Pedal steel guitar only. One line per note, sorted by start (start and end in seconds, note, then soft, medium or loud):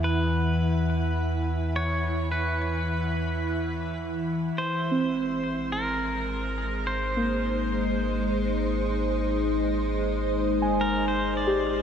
0.04 1.76 B4 medium
1.76 2.31 C#5 loud
2.32 3.97 B4 medium
4.58 5.72 C5 medium
5.72 6.86 A#4 medium
6.87 8.51 C5 medium
10.81 11.08 A#4 medium
11.08 11.37 C5 medium
11.37 11.82 D5 medium